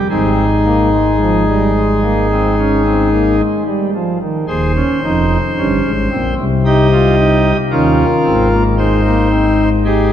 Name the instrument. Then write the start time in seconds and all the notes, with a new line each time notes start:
pipe organ
0.10 G#1 G#2 C4 D#4 G#4
0.65 A#3
0.92 G#3
1.20 F3
1.47 G3
1.76 G#3
2.03 A#3
2.31 C4
2.58 C#4
2.86 C4
3.11 A#3
3.39 G#3
3.66 G3
3.94 F3
4.22 D#3
4.48 D#1 D#2 G#4 C5
4.76 C#4
5.04 F1 F2 D#4
5.58 G1 G2 C#4
5.84 G#1 G#2
6.11 A#1 A#2 C4
6.38 C2 C3
6.65 D#4 G4 D#5
6.92 F4
7.19 D#4
7.71 D#2 D#3 C#4 F4 A#4
8.25 G#1 G#2 C4
8.53 A#3
8.78 G#3 D#4 C5
9.06 A#3
9.31 C4
9.85 D#4 G4 G#4